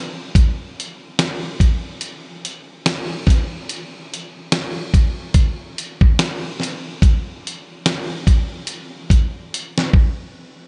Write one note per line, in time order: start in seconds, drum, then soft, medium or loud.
0.35 kick loud
0.35 closed hi-hat medium
0.80 closed hi-hat medium
1.19 finger snap medium
1.19 snare loud
1.19 closed hi-hat medium
1.60 kick medium
1.60 closed hi-hat medium
2.01 closed hi-hat medium
2.45 closed hi-hat medium
2.86 finger snap medium
2.86 snare loud
2.86 closed hi-hat medium
3.27 kick loud
3.27 snare soft
3.27 closed hi-hat medium
3.69 closed hi-hat medium
4.14 closed hi-hat medium
4.52 finger snap medium
4.52 snare loud
4.52 closed hi-hat medium
4.94 kick loud
4.94 closed hi-hat medium
5.34 kick medium
5.34 closed hi-hat medium
5.78 closed hi-hat medium
6.01 kick loud
6.19 finger snap medium
6.19 snare loud
6.19 closed hi-hat medium
6.60 snare soft
6.60 closed hi-hat medium
7.02 kick loud
7.02 closed hi-hat medium
7.47 closed hi-hat medium
7.86 finger snap medium
7.86 snare loud
7.86 closed hi-hat medium
8.27 kick loud
8.27 closed hi-hat medium
8.67 closed hi-hat medium
9.10 kick medium
9.10 closed hi-hat medium
9.54 closed hi-hat medium
9.78 snare medium
9.93 kick loud